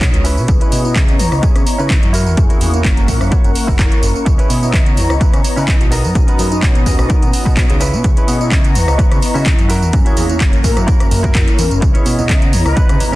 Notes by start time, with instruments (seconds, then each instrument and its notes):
Already playing: violin section B3 A#5 D#6, analog polysynth B3 C#4 D#4 F#4
0.01 kick, clap, closed hi-hat, tambourine
0.14 analog synth bass C#2, closed hi-hat, tambourine
0.24 clean electric guitar C#4 E4 B4, violin section C#5 C#6, open hi-hat, tambourine
0.37 analog synth bass B2, tambourine
0.48 analog synth bass C#2, analog polysynth B3 E4 G#4 D#5, kick, closed hi-hat, tambourine
0.60 clean electric guitar C#4 E4 B4, closed hi-hat, tambourine
0.72 analog synth bass B2, open hi-hat, tambourine
0.84 analog polysynth B3 E4 D#5 A#5, tambourine
0.96 analog synth bass C#3, kick, clap, closed hi-hat, tambourine
1.08 closed hi-hat, tambourine
1.19 analog synth bass E2, open hi-hat, tambourine
1.32 analog synth bass C#2, cross-stick, tambourine
1.42 analog synth bass C#3, clean electric guitar C#4 E4 G#4, kick, closed hi-hat, tambourine
1.56 analog synth bass C#3, cross-stick, closed hi-hat, tambourine
1.66 open hi-hat, tambourine
1.78 analog synth bass C#3, clean electric guitar C#4 E4 B4, tambourine
1.90 kick, clap, closed hi-hat, tambourine
2.03 analog synth bass F#2, closed hi-hat, tambourine
2.13 clean electric guitar E4 F#4 A#4, violin section A#4 F#5, open hi-hat, tambourine
2.26 analog synth bass E2, tambourine
2.37 analog synth bass F#2, analog polysynth A#3 C#4 E4 G#4, kick, closed hi-hat, tambourine
2.49 analog synth bass E2, clean electric guitar E4 F#4 A#4, closed hi-hat, tambourine
2.61 analog synth bass E2, open hi-hat, tambourine
2.73 analog polysynth A#3 C#4 E4 A#4, closed hi-hat, tambourine
2.85 analog synth bass F#1, kick, clap, closed hi-hat, tambourine
2.97 closed hi-hat, tambourine
3.08 analog synth bass A#2, kick, open hi-hat, tambourine
3.21 analog synth bass F#2, cross-stick, tambourine
3.31 clean electric guitar E4 F#4 C#5, kick, closed hi-hat, tambourine
3.44 analog synth bass F#1, closed hi-hat, tambourine
3.55 open hi-hat, tambourine
3.67 analog synth bass F#1, clean electric guitar E4 F#4 A#4, kick, tambourine
3.79 kick, clap, closed hi-hat, tambourine
3.92 closed hi-hat, tambourine
4.02 analog synth bass F#1, muted clean electric guitar stroke, open hi-hat, tambourine
4.15 tambourine
4.25 analog synth bass C#2, analog polysynth B3 E4 G#4 D#5, violin section C#5, muted clean electric guitar stroke, kick, closed hi-hat, tambourine
4.38 clean electric guitar C#4 E4 B4, closed hi-hat, tambourine
4.50 analog synth bass B2, open hi-hat, tambourine
4.62 analog polysynth B3 E4 D#5 A#5, tambourine
4.74 analog synth bass C#3, kick, clap, closed hi-hat, tambourine
4.86 closed hi-hat, tambourine
4.97 analog synth bass E2, open hi-hat, tambourine
5.10 analog synth bass C#2, cross-stick, tambourine
5.20 analog synth bass C#3, clean electric guitar C#4 E4 B4, kick, closed hi-hat, tambourine
5.33 analog synth bass C#3, cross-stick, closed hi-hat, tambourine
5.44 open hi-hat, tambourine
5.56 analog synth bass C#3, clean electric guitar C#4 E4 B4, tambourine
5.68 kick, clap, closed hi-hat, tambourine
5.81 analog synth bass B1, closed hi-hat, tambourine
5.91 clean electric guitar B3 D#4 A#4, violin section B3 A#5 D#6, open hi-hat, tambourine
6.04 analog synth bass F#2, tambourine
6.15 analog synth bass B1, analog polysynth C#4 D#4 F#4 A#4, kick, closed hi-hat, tambourine
6.27 analog synth bass F#2, clean electric guitar B3 D#4 B4, closed hi-hat, tambourine
6.39 analog synth bass F#2, open hi-hat, tambourine
6.51 analog polysynth B3 C#4 D#4 F#4, closed hi-hat, tambourine
6.63 analog synth bass B2, kick, clap, closed hi-hat, tambourine
6.75 closed hi-hat, tambourine
6.86 analog synth bass D#2, kick, open hi-hat, tambourine
6.99 analog synth bass B1, cross-stick, tambourine
7.09 clean electric guitar B3 D#4 A#4, kick, closed hi-hat, tambourine
7.22 analog synth bass B2, closed hi-hat, tambourine
7.33 open hi-hat, tambourine
7.45 analog synth bass B2, clean electric guitar B3 D#4 F#4, kick, tambourine
7.57 kick, clap, closed hi-hat, tambourine
7.70 analog synth bass C#2, closed hi-hat, tambourine
7.80 violin section B3 C#6, clean electric guitar C#4 E4 B4, open hi-hat, tambourine
7.93 analog synth bass B2, tambourine
8.04 analog synth bass C#2, analog polysynth B3 E4 G#4 D#5, kick, closed hi-hat, tambourine
8.16 clean electric guitar C#4 E4 B4, closed hi-hat, tambourine
8.28 analog synth bass B2, open hi-hat, tambourine
8.40 analog polysynth B3 E4 D#5 A#5, tambourine
8.52 analog synth bass C#3, kick, clap, closed hi-hat, tambourine
8.64 closed hi-hat, tambourine
8.75 analog synth bass E2, open hi-hat, tambourine
8.88 analog synth bass C#2, cross-stick, tambourine
8.98 analog synth bass C#3, clean electric guitar C#4 E4 B4, kick, closed hi-hat, tambourine
9.11 analog synth bass C#3, cross-stick, closed hi-hat, tambourine
9.22 open hi-hat, tambourine
9.34 analog synth bass C#3, clean electric guitar C#4 E4 F#4, tambourine
9.46 kick, clap, closed hi-hat, tambourine
9.59 analog synth bass F#2, closed hi-hat, tambourine
9.69 clean electric guitar E4 F#4 A#4, violin section F#4 A#5, open hi-hat, tambourine
9.82 analog synth bass E2, tambourine
9.93 analog synth bass F#2, analog polysynth A#3 C#4 E4 G#4, kick, closed hi-hat, tambourine
10.05 analog synth bass E2, clean electric guitar E4 F#4 C#5, closed hi-hat, tambourine
10.17 analog synth bass E2, open hi-hat, tambourine
10.29 analog polysynth A#3 C#4 E4 A#4, closed hi-hat, tambourine
10.40 analog synth bass F#1, kick, clap, closed hi-hat, tambourine
10.53 closed hi-hat, tambourine
10.64 analog synth bass A#2, kick, open hi-hat, tambourine
10.77 analog synth bass F#2, cross-stick, closed hi-hat, tambourine
10.87 clean electric guitar E4 F#4 A#4, kick, closed hi-hat, tambourine
11.00 analog synth bass F#1, cross-stick, closed hi-hat, tambourine
11.11 analog synth bass F#1, open hi-hat, tambourine
11.23 clean electric guitar E4 F#4 A#4, kick, closed hi-hat
11.35 kick, clap, closed hi-hat, tambourine
11.48 closed hi-hat, tambourine
11.58 analog synth bass E2, muted clean electric guitar stroke, open hi-hat, tambourine
11.71 analog synth bass F#1, closed hi-hat, tambourine
11.81 analog synth bass C#2, analog polysynth B3 E4 G#4 D#5, violin section C#5, muted clean electric guitar stroke, kick, closed hi-hat, tambourine
11.94 clean electric guitar C#4 E4 C#5, closed hi-hat, tambourine, low conga, shaker
12.06 analog synth bass B2, open hi-hat, tambourine, shaker
12.18 analog polysynth B3 E4 D#5 A#5, tambourine, low conga, shaker
12.29 analog synth bass C#3, kick, clap, closed hi-hat, tambourine, shaker
12.42 closed hi-hat, tambourine, shaker
12.53 analog synth bass E2, open hi-hat, tambourine, shaker
12.66 analog synth bass C#2, trumpet section B4, cross-stick, tambourine
12.76 analog synth bass C#3, clean electric guitar C#4 E4 B4, kick, closed hi-hat, tambourine
12.89 analog synth bass C#3, cross-stick, closed hi-hat, tambourine, high conga, shaker
13.00 open hi-hat, tambourine, low conga, shaker